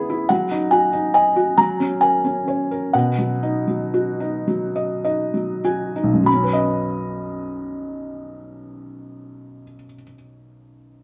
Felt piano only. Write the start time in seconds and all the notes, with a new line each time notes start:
Already playing: E3 B3 E4 G#4 E5
0.10 E4
0.30 F#3
0.51 D#4
0.72 F#4
0.93 D#4
1.14 D#5
1.36 F#4
1.58 F#3
1.80 C#4
2.02 A#4
2.24 C#4
2.48 C#5
2.71 A#4
2.95 B2
3.18 F#3
3.43 D#4
3.68 F#3
3.94 F#4
4.20 D#4
4.48 F#3
4.76 D#5
5.04 D#4 D#5
5.34 F#3
5.64 F#4 G#5
5.96 D#4
6.04 B1
6.14 F#2
6.23 F#3
6.34 C#4
6.43 B4
6.53 D#5